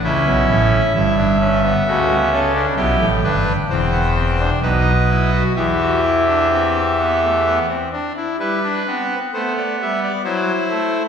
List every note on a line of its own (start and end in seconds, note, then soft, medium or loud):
0.04 0.23 C#2 medium
0.04 0.23 C#3 medium
0.04 0.82 C#4 medium
0.04 0.93 E4 medium
0.04 2.40 E5 medium
0.26 0.46 B1 medium
0.26 0.46 B2 medium
0.48 0.77 A1 medium
0.48 0.77 A2 medium
0.94 1.73 G1 medium
0.94 1.73 G2 medium
0.94 1.14 E4 medium
1.18 1.37 D4 medium
1.40 1.60 C#4 medium
1.63 1.83 B3 medium
1.87 2.66 C#2 medium
1.87 2.66 C#3 medium
1.87 2.07 A3 medium
1.87 2.15 F#4 medium
2.10 2.29 B3 medium
2.33 2.52 C#4 medium
2.33 2.61 A4 medium
2.54 2.74 D4 medium
2.76 2.97 B1 medium
2.76 2.97 B2 medium
2.76 3.06 E4 medium
2.76 3.05 G4 medium
2.76 3.56 G5 medium
3.00 3.20 A1 medium
3.00 3.20 A2 medium
3.24 3.53 G1 medium
3.24 3.52 G2 medium
3.24 3.53 D4 medium
3.24 3.52 B4 medium
3.70 4.50 E1 medium
3.70 4.50 E2 medium
3.70 3.90 C4 medium
3.70 4.50 C5 medium
3.70 4.50 G5 medium
3.92 4.12 B3 medium
4.16 4.36 C4 medium
4.40 4.60 D4 medium
4.62 5.43 B1 medium
4.62 5.43 B2 medium
4.62 4.92 D#4 medium
4.62 5.43 B4 medium
4.62 5.43 D#5 medium
5.10 5.30 E4 medium
5.32 5.53 F#4 medium
5.56 7.59 E2 medium
5.56 7.58 E3 medium
5.56 7.59 G4 medium
5.56 7.59 E5 medium
5.81 6.01 F#4 medium
6.04 6.24 E4 medium
6.28 6.48 D4 medium
6.52 6.81 C4 medium
7.00 7.19 B3 medium
7.23 7.42 A3 medium
7.46 7.66 B3 medium
7.69 7.89 C4 medium
7.93 8.13 D4 medium
8.17 8.36 E4 medium
8.39 8.68 G3 medium
8.39 8.59 E4 medium
8.39 9.19 B4 medium
8.64 8.83 D4 medium
8.86 9.15 B3 medium
8.86 9.15 C4 medium
9.33 9.61 A3 medium
9.33 10.12 B3 medium
9.33 9.53 C5 medium
9.57 9.76 D5 medium
9.82 10.09 G3 medium
9.82 10.00 E5 medium
10.03 10.22 D5 medium
10.24 10.52 F#3 medium
10.24 11.03 E4 medium
10.24 11.03 C5 medium
10.70 10.98 A3 medium